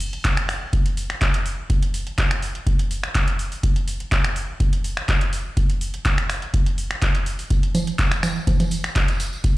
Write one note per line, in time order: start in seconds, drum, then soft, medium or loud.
0.00 open hi-hat loud
0.13 closed hi-hat soft
0.25 kick loud
0.25 clap loud
0.25 closed hi-hat medium
0.37 finger snap medium
0.37 closed hi-hat medium
0.49 finger snap medium
0.49 open hi-hat loud
0.73 kick loud
0.73 closed hi-hat medium
0.86 closed hi-hat medium
0.97 open hi-hat loud
1.10 finger snap medium
1.10 closed hi-hat soft
1.21 kick loud
1.21 clap loud
1.21 closed hi-hat medium
1.34 closed hi-hat medium
1.46 open hi-hat loud
1.70 kick loud
1.70 closed hi-hat medium
1.83 closed hi-hat medium
1.94 open hi-hat loud
2.07 closed hi-hat soft
2.18 kick loud
2.18 clap loud
2.18 closed hi-hat medium
2.31 finger snap medium
2.31 closed hi-hat medium
2.42 open hi-hat loud
2.55 closed hi-hat soft
2.67 kick loud
2.67 closed hi-hat medium
2.79 closed hi-hat medium
2.91 open hi-hat loud
3.03 finger snap medium
3.03 closed hi-hat soft
3.15 kick loud
3.15 clap loud
3.15 closed hi-hat medium
3.28 closed hi-hat medium
3.39 open hi-hat loud
3.52 open hi-hat medium
3.63 kick loud
3.63 closed hi-hat medium
3.76 closed hi-hat soft
3.88 open hi-hat loud
4.00 closed hi-hat soft
4.12 kick loud
4.12 clap loud
4.12 closed hi-hat medium
4.24 finger snap medium
4.24 closed hi-hat medium
4.36 open hi-hat loud
4.60 kick loud
4.60 closed hi-hat medium
4.73 closed hi-hat medium
4.84 open hi-hat loud
4.97 finger snap medium
4.97 closed hi-hat soft
5.09 kick loud
5.09 clap loud
5.09 closed hi-hat medium
5.21 closed hi-hat medium
5.33 open hi-hat loud
5.57 kick loud
5.57 closed hi-hat medium
5.70 closed hi-hat soft
5.81 open hi-hat loud
5.94 closed hi-hat soft
6.05 kick loud
6.05 clap loud
6.05 closed hi-hat medium
6.18 finger snap medium
6.18 closed hi-hat medium
6.30 finger snap medium
6.30 open hi-hat loud
6.42 closed hi-hat soft
6.54 kick loud
6.54 closed hi-hat medium
6.66 closed hi-hat medium
6.78 open hi-hat loud
6.91 finger snap medium
6.91 closed hi-hat soft
7.02 kick loud
7.02 clap loud
7.02 closed hi-hat medium
7.15 closed hi-hat medium
7.26 open hi-hat loud
7.39 open hi-hat medium
7.50 kick loud
7.50 closed hi-hat medium
7.50 tambourine soft
7.63 closed hi-hat soft
7.75 open hi-hat loud
7.75 tambourine loud
7.75 low conga medium
7.87 closed hi-hat soft
7.87 tambourine soft
7.99 kick loud
7.99 clap loud
7.99 closed hi-hat medium
7.99 tambourine medium
8.12 finger snap medium
8.12 closed hi-hat medium
8.12 tambourine soft
8.23 finger snap medium
8.23 open hi-hat loud
8.23 tambourine medium
8.23 low conga medium
8.36 tambourine soft
8.47 kick loud
8.47 closed hi-hat medium
8.47 tambourine medium
8.47 low conga medium
8.60 closed hi-hat medium
8.60 tambourine soft
8.60 low conga medium
8.71 open hi-hat loud
8.71 tambourine medium
8.84 finger snap medium
8.84 closed hi-hat soft
8.84 tambourine soft
8.96 kick loud
8.96 clap loud
8.96 closed hi-hat medium
8.96 tambourine medium
9.08 closed hi-hat medium
9.08 tambourine soft
9.20 open hi-hat loud
9.20 tambourine medium
9.33 tambourine soft
9.44 kick loud
9.44 closed hi-hat medium
9.44 tambourine medium